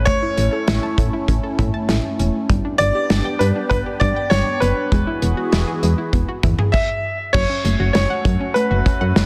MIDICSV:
0, 0, Header, 1, 6, 480
1, 0, Start_track
1, 0, Key_signature, 3, "major"
1, 0, Tempo, 606061
1, 56, Time_signature, 4, 2, 24, 8
1, 7332, End_track
2, 0, Start_track
2, 0, Title_t, "Grand piano"
2, 0, Program_c, 0, 0
2, 43, Note_on_c, 0, 73, 109
2, 738, Note_off_c, 0, 73, 0
2, 2204, Note_on_c, 0, 74, 121
2, 2686, Note_on_c, 0, 71, 92
2, 2705, Note_off_c, 0, 74, 0
2, 2741, Note_off_c, 0, 71, 0
2, 2926, Note_on_c, 0, 71, 97
2, 2981, Note_off_c, 0, 71, 0
2, 3166, Note_on_c, 0, 74, 97
2, 3405, Note_on_c, 0, 73, 102
2, 3419, Note_off_c, 0, 74, 0
2, 3646, Note_on_c, 0, 71, 84
2, 3658, Note_off_c, 0, 73, 0
2, 5300, Note_off_c, 0, 71, 0
2, 5323, Note_on_c, 0, 76, 94
2, 5805, Note_on_c, 0, 73, 94
2, 5824, Note_off_c, 0, 76, 0
2, 6271, Note_off_c, 0, 73, 0
2, 6283, Note_on_c, 0, 73, 83
2, 6738, Note_off_c, 0, 73, 0
2, 6765, Note_on_c, 0, 71, 87
2, 7332, Note_off_c, 0, 71, 0
2, 7332, End_track
3, 0, Start_track
3, 0, Title_t, "Synth pluck"
3, 0, Program_c, 1, 84
3, 56, Note_on_c, 1, 57, 89
3, 156, Note_off_c, 1, 57, 0
3, 177, Note_on_c, 1, 64, 78
3, 276, Note_off_c, 1, 64, 0
3, 297, Note_on_c, 1, 61, 77
3, 396, Note_off_c, 1, 61, 0
3, 416, Note_on_c, 1, 69, 80
3, 515, Note_off_c, 1, 69, 0
3, 536, Note_on_c, 1, 64, 89
3, 635, Note_off_c, 1, 64, 0
3, 657, Note_on_c, 1, 81, 81
3, 756, Note_off_c, 1, 81, 0
3, 777, Note_on_c, 1, 57, 77
3, 876, Note_off_c, 1, 57, 0
3, 897, Note_on_c, 1, 64, 78
3, 996, Note_off_c, 1, 64, 0
3, 1017, Note_on_c, 1, 61, 91
3, 1116, Note_off_c, 1, 61, 0
3, 1136, Note_on_c, 1, 69, 79
3, 1235, Note_off_c, 1, 69, 0
3, 1257, Note_on_c, 1, 64, 86
3, 1356, Note_off_c, 1, 64, 0
3, 1377, Note_on_c, 1, 81, 79
3, 1476, Note_off_c, 1, 81, 0
3, 1498, Note_on_c, 1, 57, 84
3, 1597, Note_off_c, 1, 57, 0
3, 1738, Note_on_c, 1, 61, 81
3, 1836, Note_off_c, 1, 61, 0
3, 1977, Note_on_c, 1, 55, 91
3, 2076, Note_off_c, 1, 55, 0
3, 2097, Note_on_c, 1, 62, 78
3, 2196, Note_off_c, 1, 62, 0
3, 2216, Note_on_c, 1, 59, 81
3, 2315, Note_off_c, 1, 59, 0
3, 2337, Note_on_c, 1, 67, 82
3, 2436, Note_off_c, 1, 67, 0
3, 2455, Note_on_c, 1, 62, 89
3, 2555, Note_off_c, 1, 62, 0
3, 2576, Note_on_c, 1, 79, 80
3, 2675, Note_off_c, 1, 79, 0
3, 2696, Note_on_c, 1, 55, 78
3, 2795, Note_off_c, 1, 55, 0
3, 2817, Note_on_c, 1, 62, 78
3, 2916, Note_off_c, 1, 62, 0
3, 2937, Note_on_c, 1, 59, 91
3, 3036, Note_off_c, 1, 59, 0
3, 3058, Note_on_c, 1, 67, 80
3, 3156, Note_off_c, 1, 67, 0
3, 3178, Note_on_c, 1, 62, 83
3, 3277, Note_off_c, 1, 62, 0
3, 3298, Note_on_c, 1, 79, 81
3, 3396, Note_off_c, 1, 79, 0
3, 3418, Note_on_c, 1, 55, 83
3, 3516, Note_off_c, 1, 55, 0
3, 3657, Note_on_c, 1, 59, 80
3, 3756, Note_off_c, 1, 59, 0
3, 3898, Note_on_c, 1, 56, 94
3, 3996, Note_off_c, 1, 56, 0
3, 4016, Note_on_c, 1, 64, 78
3, 4115, Note_off_c, 1, 64, 0
3, 4137, Note_on_c, 1, 59, 80
3, 4236, Note_off_c, 1, 59, 0
3, 4255, Note_on_c, 1, 66, 82
3, 4355, Note_off_c, 1, 66, 0
3, 4375, Note_on_c, 1, 64, 94
3, 4475, Note_off_c, 1, 64, 0
3, 4495, Note_on_c, 1, 68, 77
3, 4595, Note_off_c, 1, 68, 0
3, 4617, Note_on_c, 1, 56, 78
3, 4716, Note_off_c, 1, 56, 0
3, 4736, Note_on_c, 1, 64, 81
3, 4835, Note_off_c, 1, 64, 0
3, 4856, Note_on_c, 1, 59, 90
3, 4955, Note_off_c, 1, 59, 0
3, 4977, Note_on_c, 1, 66, 82
3, 5076, Note_off_c, 1, 66, 0
3, 5097, Note_on_c, 1, 64, 84
3, 5196, Note_off_c, 1, 64, 0
3, 5218, Note_on_c, 1, 68, 83
3, 5316, Note_off_c, 1, 68, 0
3, 5817, Note_on_c, 1, 54, 90
3, 5916, Note_off_c, 1, 54, 0
3, 5936, Note_on_c, 1, 61, 81
3, 6035, Note_off_c, 1, 61, 0
3, 6056, Note_on_c, 1, 57, 81
3, 6155, Note_off_c, 1, 57, 0
3, 6175, Note_on_c, 1, 66, 85
3, 6275, Note_off_c, 1, 66, 0
3, 6295, Note_on_c, 1, 61, 91
3, 6395, Note_off_c, 1, 61, 0
3, 6416, Note_on_c, 1, 78, 84
3, 6515, Note_off_c, 1, 78, 0
3, 6537, Note_on_c, 1, 54, 78
3, 6636, Note_off_c, 1, 54, 0
3, 6656, Note_on_c, 1, 61, 78
3, 6755, Note_off_c, 1, 61, 0
3, 6776, Note_on_c, 1, 57, 93
3, 6875, Note_off_c, 1, 57, 0
3, 6896, Note_on_c, 1, 66, 84
3, 6995, Note_off_c, 1, 66, 0
3, 7016, Note_on_c, 1, 61, 85
3, 7115, Note_off_c, 1, 61, 0
3, 7135, Note_on_c, 1, 78, 82
3, 7235, Note_off_c, 1, 78, 0
3, 7257, Note_on_c, 1, 54, 83
3, 7332, Note_off_c, 1, 54, 0
3, 7332, End_track
4, 0, Start_track
4, 0, Title_t, "Analog synth pad"
4, 0, Program_c, 2, 89
4, 0, Note_on_c, 2, 57, 81
4, 0, Note_on_c, 2, 61, 73
4, 0, Note_on_c, 2, 64, 89
4, 1945, Note_off_c, 2, 61, 0
4, 1955, Note_off_c, 2, 64, 0
4, 1956, Note_off_c, 2, 57, 0
4, 1974, Note_on_c, 2, 62, 77
4, 1975, Note_on_c, 2, 59, 81
4, 1976, Note_on_c, 2, 67, 90
4, 3876, Note_off_c, 2, 59, 0
4, 3876, Note_off_c, 2, 62, 0
4, 3877, Note_off_c, 2, 67, 0
4, 3896, Note_on_c, 2, 68, 89
4, 3897, Note_on_c, 2, 52, 83
4, 3897, Note_on_c, 2, 59, 74
4, 3898, Note_on_c, 2, 66, 74
4, 5322, Note_off_c, 2, 52, 0
4, 5322, Note_off_c, 2, 59, 0
4, 5322, Note_off_c, 2, 68, 0
4, 5323, Note_off_c, 2, 66, 0
4, 5815, Note_on_c, 2, 57, 82
4, 5816, Note_on_c, 2, 61, 76
4, 5816, Note_on_c, 2, 66, 90
4, 7332, Note_off_c, 2, 57, 0
4, 7332, Note_off_c, 2, 61, 0
4, 7332, Note_off_c, 2, 66, 0
4, 7332, End_track
5, 0, Start_track
5, 0, Title_t, "FM bass"
5, 0, Program_c, 3, 39
5, 0, Note_on_c, 3, 33, 96
5, 93, Note_off_c, 3, 33, 0
5, 298, Note_on_c, 3, 33, 100
5, 389, Note_off_c, 3, 33, 0
5, 536, Note_on_c, 3, 33, 104
5, 628, Note_off_c, 3, 33, 0
5, 776, Note_on_c, 3, 45, 94
5, 868, Note_off_c, 3, 45, 0
5, 1016, Note_on_c, 3, 33, 108
5, 1108, Note_off_c, 3, 33, 0
5, 1257, Note_on_c, 3, 45, 99
5, 1349, Note_off_c, 3, 45, 0
5, 1495, Note_on_c, 3, 33, 105
5, 1588, Note_off_c, 3, 33, 0
5, 1736, Note_on_c, 3, 28, 89
5, 1828, Note_off_c, 3, 28, 0
5, 1977, Note_on_c, 3, 31, 113
5, 2069, Note_off_c, 3, 31, 0
5, 2216, Note_on_c, 3, 31, 109
5, 2308, Note_off_c, 3, 31, 0
5, 2455, Note_on_c, 3, 31, 94
5, 2548, Note_off_c, 3, 31, 0
5, 2696, Note_on_c, 3, 43, 99
5, 2788, Note_off_c, 3, 43, 0
5, 2936, Note_on_c, 3, 31, 110
5, 3028, Note_off_c, 3, 31, 0
5, 3177, Note_on_c, 3, 43, 104
5, 3269, Note_off_c, 3, 43, 0
5, 3417, Note_on_c, 3, 31, 97
5, 3508, Note_off_c, 3, 31, 0
5, 3656, Note_on_c, 3, 30, 92
5, 3748, Note_off_c, 3, 30, 0
5, 3896, Note_on_c, 3, 28, 102
5, 3988, Note_off_c, 3, 28, 0
5, 4137, Note_on_c, 3, 28, 107
5, 4228, Note_off_c, 3, 28, 0
5, 4377, Note_on_c, 3, 28, 106
5, 4469, Note_off_c, 3, 28, 0
5, 4617, Note_on_c, 3, 40, 97
5, 4709, Note_off_c, 3, 40, 0
5, 4855, Note_on_c, 3, 28, 109
5, 4948, Note_off_c, 3, 28, 0
5, 5096, Note_on_c, 3, 40, 103
5, 5188, Note_off_c, 3, 40, 0
5, 5816, Note_on_c, 3, 30, 107
5, 5908, Note_off_c, 3, 30, 0
5, 6055, Note_on_c, 3, 30, 104
5, 6148, Note_off_c, 3, 30, 0
5, 6176, Note_on_c, 3, 30, 98
5, 6268, Note_off_c, 3, 30, 0
5, 6296, Note_on_c, 3, 30, 108
5, 6388, Note_off_c, 3, 30, 0
5, 6534, Note_on_c, 3, 42, 96
5, 6627, Note_off_c, 3, 42, 0
5, 6896, Note_on_c, 3, 30, 98
5, 6988, Note_off_c, 3, 30, 0
5, 7136, Note_on_c, 3, 42, 89
5, 7228, Note_off_c, 3, 42, 0
5, 7257, Note_on_c, 3, 30, 101
5, 7332, Note_off_c, 3, 30, 0
5, 7332, End_track
6, 0, Start_track
6, 0, Title_t, "Drums"
6, 56, Note_on_c, 9, 36, 107
6, 56, Note_on_c, 9, 42, 68
6, 135, Note_off_c, 9, 36, 0
6, 135, Note_off_c, 9, 42, 0
6, 297, Note_on_c, 9, 42, 83
6, 376, Note_off_c, 9, 42, 0
6, 536, Note_on_c, 9, 42, 86
6, 538, Note_on_c, 9, 38, 107
6, 615, Note_off_c, 9, 42, 0
6, 617, Note_off_c, 9, 38, 0
6, 775, Note_on_c, 9, 36, 90
6, 779, Note_on_c, 9, 42, 68
6, 855, Note_off_c, 9, 36, 0
6, 858, Note_off_c, 9, 42, 0
6, 1016, Note_on_c, 9, 36, 83
6, 1018, Note_on_c, 9, 42, 68
6, 1095, Note_off_c, 9, 36, 0
6, 1097, Note_off_c, 9, 42, 0
6, 1257, Note_on_c, 9, 36, 93
6, 1257, Note_on_c, 9, 45, 90
6, 1259, Note_on_c, 9, 42, 71
6, 1336, Note_off_c, 9, 36, 0
6, 1336, Note_off_c, 9, 45, 0
6, 1338, Note_off_c, 9, 42, 0
6, 1495, Note_on_c, 9, 38, 119
6, 1496, Note_on_c, 9, 42, 69
6, 1574, Note_off_c, 9, 38, 0
6, 1576, Note_off_c, 9, 42, 0
6, 1738, Note_on_c, 9, 42, 68
6, 1817, Note_off_c, 9, 42, 0
6, 1976, Note_on_c, 9, 36, 112
6, 1977, Note_on_c, 9, 42, 72
6, 2056, Note_off_c, 9, 36, 0
6, 2056, Note_off_c, 9, 42, 0
6, 2218, Note_on_c, 9, 42, 81
6, 2297, Note_off_c, 9, 42, 0
6, 2455, Note_on_c, 9, 42, 86
6, 2457, Note_on_c, 9, 38, 112
6, 2534, Note_off_c, 9, 42, 0
6, 2536, Note_off_c, 9, 38, 0
6, 2698, Note_on_c, 9, 42, 68
6, 2777, Note_off_c, 9, 42, 0
6, 2936, Note_on_c, 9, 36, 85
6, 2938, Note_on_c, 9, 42, 69
6, 3015, Note_off_c, 9, 36, 0
6, 3017, Note_off_c, 9, 42, 0
6, 3177, Note_on_c, 9, 36, 92
6, 3177, Note_on_c, 9, 45, 88
6, 3178, Note_on_c, 9, 42, 71
6, 3256, Note_off_c, 9, 36, 0
6, 3256, Note_off_c, 9, 45, 0
6, 3257, Note_off_c, 9, 42, 0
6, 3415, Note_on_c, 9, 38, 126
6, 3417, Note_on_c, 9, 42, 69
6, 3494, Note_off_c, 9, 38, 0
6, 3496, Note_off_c, 9, 42, 0
6, 3657, Note_on_c, 9, 42, 72
6, 3736, Note_off_c, 9, 42, 0
6, 3896, Note_on_c, 9, 36, 110
6, 3897, Note_on_c, 9, 42, 72
6, 3975, Note_off_c, 9, 36, 0
6, 3976, Note_off_c, 9, 42, 0
6, 4136, Note_on_c, 9, 42, 84
6, 4215, Note_off_c, 9, 42, 0
6, 4375, Note_on_c, 9, 42, 83
6, 4377, Note_on_c, 9, 38, 113
6, 4455, Note_off_c, 9, 42, 0
6, 4457, Note_off_c, 9, 38, 0
6, 4617, Note_on_c, 9, 42, 71
6, 4696, Note_off_c, 9, 42, 0
6, 4855, Note_on_c, 9, 36, 81
6, 4856, Note_on_c, 9, 42, 69
6, 4934, Note_off_c, 9, 36, 0
6, 4936, Note_off_c, 9, 42, 0
6, 5095, Note_on_c, 9, 45, 93
6, 5096, Note_on_c, 9, 36, 92
6, 5097, Note_on_c, 9, 42, 73
6, 5174, Note_off_c, 9, 45, 0
6, 5175, Note_off_c, 9, 36, 0
6, 5176, Note_off_c, 9, 42, 0
6, 5216, Note_on_c, 9, 45, 93
6, 5295, Note_off_c, 9, 45, 0
6, 5336, Note_on_c, 9, 36, 109
6, 5336, Note_on_c, 9, 49, 93
6, 5415, Note_off_c, 9, 36, 0
6, 5415, Note_off_c, 9, 49, 0
6, 5816, Note_on_c, 9, 36, 108
6, 5816, Note_on_c, 9, 49, 95
6, 5895, Note_off_c, 9, 36, 0
6, 5895, Note_off_c, 9, 49, 0
6, 6057, Note_on_c, 9, 42, 85
6, 6136, Note_off_c, 9, 42, 0
6, 6295, Note_on_c, 9, 42, 87
6, 6297, Note_on_c, 9, 38, 113
6, 6374, Note_off_c, 9, 42, 0
6, 6376, Note_off_c, 9, 38, 0
6, 6535, Note_on_c, 9, 36, 95
6, 6537, Note_on_c, 9, 42, 74
6, 6614, Note_off_c, 9, 36, 0
6, 6616, Note_off_c, 9, 42, 0
6, 6778, Note_on_c, 9, 42, 68
6, 6857, Note_off_c, 9, 42, 0
6, 7017, Note_on_c, 9, 36, 92
6, 7018, Note_on_c, 9, 42, 74
6, 7096, Note_off_c, 9, 36, 0
6, 7098, Note_off_c, 9, 42, 0
6, 7256, Note_on_c, 9, 38, 127
6, 7257, Note_on_c, 9, 42, 72
6, 7332, Note_off_c, 9, 38, 0
6, 7332, Note_off_c, 9, 42, 0
6, 7332, End_track
0, 0, End_of_file